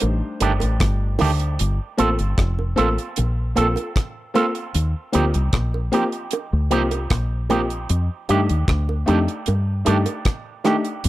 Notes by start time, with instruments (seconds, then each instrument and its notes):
Already playing: grand piano G3 A3 D4 D#4 C5
0.00 fingered electric bass A1, closed hi-hat, high bongo
0.40 fingered electric bass G1, clean electric guitar D#3 A3 D4 G4, closed hi-hat, high bongo
0.60 fingered electric bass A1, closed hi-hat, high bongo
0.80 fingered electric bass G1, kick, cross-stick, closed hi-hat
1.19 fingered electric bass D2, clean electric guitar D#3 A3 D4 G4, open hi-hat, high bongo, low bongo
1.40 closed hi-hat
1.59 fingered electric bass G1, closed hi-hat
1.97 fingered electric bass A1, grand piano A#3 C4 F4 A4, clean electric guitar A#3 C4 F4 A4, closed hi-hat
2.19 fingered electric bass G1, closed hi-hat
2.38 fingered electric bass F1, kick, cross-stick, closed hi-hat
2.59 high bongo
2.76 fingered electric bass A1, grand piano A#3 C4 F4 A4, clean electric guitar A#3 C4 F4 A4, closed hi-hat
2.98 closed hi-hat
3.16 fingered electric bass A#1, closed hi-hat, high bongo
3.55 fingered electric bass A#1, grand piano A#3 C4 F4 A4, clean electric guitar A#3 C4 F4 A4, closed hi-hat, high bongo
3.76 grand piano F4 A4, closed hi-hat, high bongo
3.96 kick, cross-stick, closed hi-hat
4.34 grand piano A#3 C4 F4 A4, clean electric guitar A#3 C4 F4 A4, closed hi-hat, high bongo, low bongo
4.55 closed hi-hat
4.74 fingered electric bass D#2, closed hi-hat
5.12 fingered electric bass D2, clean electric guitar F3 C4 D#4 G4, grand piano A#3 C4 F4 G4, closed hi-hat
5.34 fingered electric bass C2, closed hi-hat
5.53 fingered electric bass A#1, kick, cross-stick, closed hi-hat
5.74 high bongo
5.92 clean electric guitar F3 C4 D#4 G4, grand piano A#3 C4 F4 G4, closed hi-hat
6.12 closed hi-hat
6.31 closed hi-hat, high bongo
6.53 fingered electric bass D2
6.71 fingered electric bass C2, clean electric guitar F3 C4 D#4 G4, grand piano A#3 C4 F4 G4, closed hi-hat, high bongo
6.91 closed hi-hat, high bongo
7.10 fingered electric bass A#1, kick, cross-stick, closed hi-hat
7.49 clean electric guitar F3 C4 D#4 G4, grand piano A#3 C4 F4 G4, closed hi-hat, high bongo, low bongo
7.70 closed hi-hat
7.89 fingered electric bass F2, closed hi-hat
8.29 fingered electric bass G2, clean electric guitar D#3 A3 D4 G4, grand piano A3 D4 D#4 G4, closed hi-hat
8.49 fingered electric bass D#2, closed hi-hat
8.68 fingered electric bass D2, kick, cross-stick, closed hi-hat
8.89 high bongo
9.06 fingered electric bass F2, clean electric guitar D#3 A3 D4 G4, grand piano A3 D4 D#4 G4, closed hi-hat
9.28 closed hi-hat
9.46 fingered electric bass G2, closed hi-hat, high bongo
9.85 fingered electric bass G2, clean electric guitar D#3 A3 D4 G4, grand piano A3 D4 D#4 G4, closed hi-hat, high bongo
10.06 grand piano D#4 G4, closed hi-hat, high bongo
10.25 kick, cross-stick, closed hi-hat
10.64 clean electric guitar D#3 A3 D4 G4, grand piano A3 D4 D#4 G4, cross-stick, closed hi-hat, high bongo, low bongo
10.85 closed hi-hat
11.04 fingered electric bass F2, closed hi-hat